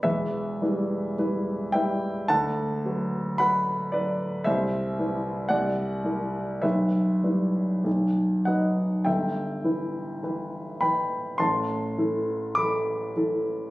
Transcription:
\new Staff \with { instrumentName = "Grand piano" } { \time 4/4 \key e \minor \tempo 4 = 52 << { <b' e''>4. <e'' g''>8 <fis'' a''>4 <fis'' b''>8 <b' d''>8 | <c'' e''>4 <d'' fis''>4 <b' e''>4 r8 <dis'' fis''>8 | <e'' g''>4. <g'' b''>8 <a'' c'''>4 <b'' d'''>8 r8 | } \\ { <e,, e,>8 <g e' b'>8 <g e' b'>8 <g e' b'>8 d,8 <fis fis' b'>8 <fis fis' b'>8 <fis fis'>8 | c,8 <g e' b'>8 c,8 <g e' bes'>8 b,,8 <g e' b'>8 b,,8 <fis dis' b'>8 | g,,8 <e e' b'>8 <e e' b'>8 <e e' b'>8 a,,8 <e e' a'>8 <e e' a'>8 <e e' a'>8 | } >> }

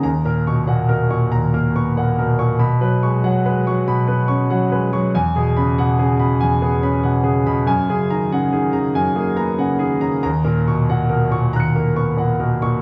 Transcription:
\new Staff \with { instrumentName = "Grand piano" } { \time 4/4 \key dis \phrygian \tempo 4 = 94 << { r1 | r1 | r1 | r1 |
r2 <fis''' cis''''>2 | } \\ { \tuplet 3/2 { <dis, ais''>8 <ais, ais'>8 <b, cis'''>8 <ais, fis''>8 <b, ais'>8 <ais, cis'''>8 <dis, ais''>8 <ais ais'>8 <b cis'''>8 <ais, fis''>8 <b, ais'>8 <ais, cis'''>8 } | \tuplet 3/2 { <b, b''>8 <fis b'>8 <gis cis'''>8 <fis fis''>8 <gis b'>8 <fis cis'''>8 <b, b''>8 <b b'>8 <cis' cis'''>8 <fis fis''>8 <gis b'>8 <fis cis'''>8 } | \tuplet 3/2 { <e, gis''>8 <b, gis'>8 <cis b''>8 <b, fis''>8 <cis gis'>8 <b, b''>8 <e, gis''>8 <b gis'>8 <cis' b''>8 <b, fis''>8 <cis gis'>8 <b, b''>8 } | \tuplet 3/2 { <fis, gis''>8 <cis gis'>8 <dis ais''>8 <cis fis''>8 <dis gis'>8 <cis ais''>8 <fis, gis''>8 <ais gis'>8 <b ais''>8 <cis fis''>8 <dis gis'>8 <cis ais''>8 } |
\tuplet 3/2 { <dis, ais''>8 <ais, ais'>8 <b, cis'''>8 <ais, fis''>8 <b, ais'>8 <ais, cis'''>8 <dis, ais''>8 <ais ais'>8 <b cis'''>8 <ais, fis''>8 <b, ais'>8 <ais, cis'''>8 } | } >> }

